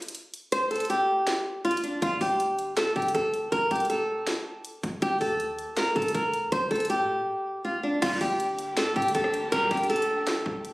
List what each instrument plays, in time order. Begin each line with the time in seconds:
0.02 closed hi-hat
0.08 closed hi-hat
0.15 closed hi-hat
0.34 closed hi-hat
0.52 nylon-string guitar C5, closed hi-hat
0.71 nylon-string guitar A4, closed hi-hat, open hi-hat
0.76 closed hi-hat
0.80 closed hi-hat
0.85 closed hi-hat
0.90 nylon-string guitar G4, closed hi-hat
1.27 snare, clap, closed hi-hat
1.65 nylon-string guitar F4, closed hi-hat
1.71 closed hi-hat
1.77 closed hi-hat
1.83 nylon-string guitar D4, closed hi-hat
2.02 808-style bass G1, nylon-string guitar F4, kick, closed hi-hat
2.21 808-style bass G1, nylon-string guitar G4, kick, open hi-hat
2.40 closed hi-hat
2.59 closed hi-hat
2.77 nylon-string guitar A4, snare, clap, closed hi-hat
2.96 808-style bass G2, nylon-string guitar G4, kick, closed hi-hat
3.02 closed hi-hat
3.08 closed hi-hat
3.15 808-style bass G1, nylon-string guitar A4, kick, closed hi-hat
3.34 closed hi-hat
3.52 808-style bass G1, nylon-string guitar A#4, kick, closed hi-hat
3.71 808-style bass F1, nylon-string guitar G4, kick, closed hi-hat, open hi-hat
3.76 closed hi-hat
3.80 closed hi-hat
3.85 closed hi-hat
3.90 nylon-string guitar A4, closed hi-hat
4.27 snare, clap, closed hi-hat
4.65 closed hi-hat
4.83 808-style bass G1, kick, closed hi-hat
5.02 808-style bass C2, nylon-string guitar G4, kick, closed hi-hat
5.21 808-style bass D#2, nylon-string guitar A4, kick, open hi-hat
5.40 closed hi-hat
5.59 closed hi-hat
5.77 nylon-string guitar A#4, snare, clap, closed hi-hat
5.96 808-style bass G2, nylon-string guitar A4, kick, closed hi-hat
6.02 closed hi-hat
6.08 closed hi-hat
6.15 808-style bass C2, nylon-string guitar A#4, kick, closed hi-hat
6.34 closed hi-hat
6.43 808-style bass D#2
6.52 808-style bass A#1, nylon-string guitar C5, kick, closed hi-hat
6.71 808-style bass A#1, nylon-string guitar A4, kick, closed hi-hat, open hi-hat
6.76 closed hi-hat
6.80 closed hi-hat
6.85 closed hi-hat
6.90 nylon-string guitar G4, closed hi-hat
6.99 808-style bass A#2
7.65 nylon-string guitar F4
7.83 nylon-string guitar D4
8.02 808-style bass G1, analog polysynth D2 A#2 G3, string section D3 G3 A#3 G4, nylon-string guitar F4, kick, closed hi-hat, crash
8.21 808-style bass G1, nylon-string guitar G4, kick, open hi-hat
8.40 closed hi-hat
8.59 closed hi-hat
8.77 nylon-string guitar A4, snare, clap, closed hi-hat
8.96 808-style bass G2, nylon-string guitar G4, kick, closed hi-hat
9.02 closed hi-hat
9.08 closed hi-hat
9.15 808-style bass G1, nylon-string guitar A4, kick, closed hi-hat
9.24 cross-stick
9.34 closed hi-hat
9.52 808-style bass G1, analog polysynth D2 A#2 G3, nylon-string guitar A#4, kick, closed hi-hat
9.71 808-style bass F1, nylon-string guitar G4, kick, closed hi-hat, open hi-hat
9.77 closed hi-hat
9.83 closed hi-hat
9.90 nylon-string guitar A4, closed hi-hat
9.96 closed hi-hat
10.02 closed hi-hat
10.27 snare, clap, closed hi-hat
10.46 808-style bass F1, kick
10.65 closed hi-hat